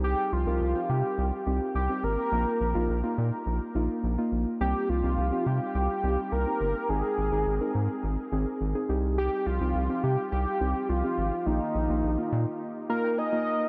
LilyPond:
<<
  \new Staff \with { instrumentName = "Analog synth lead" } { \time 4/4 \key c \minor \tempo 4 = 105 g'8 f'4 g'4 r8 g'8 bes'8~ | bes'4 r2. | g'8 f'4 g'8 g'4 bes'4 | aes'2 r2 |
g'8 f'4 g'8 g'4 f'4 | ees'2 r8 bes'8 ees''4 | }
  \new Staff \with { instrumentName = "Synth keys" } { \time 4/4 \key c \minor << { r1 | r1 | r1 | r1 |
r1 | r2 r8 f''16 g''16 aes''8 bes''8 | } \\ { <c' ees' g'>8 r16 <c' ees' bes'>16 r16 <c' ees' g'>4 r16 <c' ees' g'>8 r16 <c' ees' g'>8 r16 | <bes ees' f'>8 r16 <bes ees' f'>16 r16 <bes ees' f'>4 r16 <bes ees' f'>8 r16 <bes ees' f'>8 r16 | <c' ees' g'>8 r16 <c' ees' g'>16 r16 <c' ees' g'>4 r16 <c' ees' g'>8 r16 <c' ees' g'>8 r16 | <c' ees' aes'>8 r16 <c' ees' aes'>16 r16 <c' ees' bes'>4 r16 <c' ees' aes'>8 r16 <c' ees' aes'>16 <c' ees' g'>8~ |
<c' ees' g'>8 r16 <c' ees' g'>16 r16 <c' ees' g'>4 r16 <c' ees' g'>8 r16 <c' ees' g'>8 r16 | <bes ees' f'>8 r16 <bes ees' f'>16 r16 <bes ees' f'>4 r16 <bes ees' f'>8 r16 <bes ees' f'>8 r16 | } >> }
  \new Staff \with { instrumentName = "Analog synth bass" } { \clef bass \time 4/4 \key c \minor c,16 r16 c,16 c,16 c,16 r16 c16 r16 c,16 r16 c,16 r16 c,16 r16 aes,,16 r16 | bes,,16 r16 bes,,16 bes,,16 bes,,16 r16 bes,16 r16 bes,,16 r16 bes,,16 r16 bes,,16 r16 bes,,16 r16 | c,16 r16 c,16 c,16 c,16 r16 c16 r16 c,16 r16 c,16 r16 c,16 r16 g,,16 r16 | aes,,16 r16 aes,,16 aes,,16 aes,,16 r16 aes,16 r16 aes,,16 r16 aes,,16 r16 aes,,16 r16 c,8~ |
c,16 r16 c,16 c,16 c,16 r16 c16 r16 c,16 r16 c,16 r16 c,16 r16 aes,,16 r16 | bes,,16 r16 bes,,16 bes,,16 bes,,16 r16 bes,16 r2 r16 | }
>>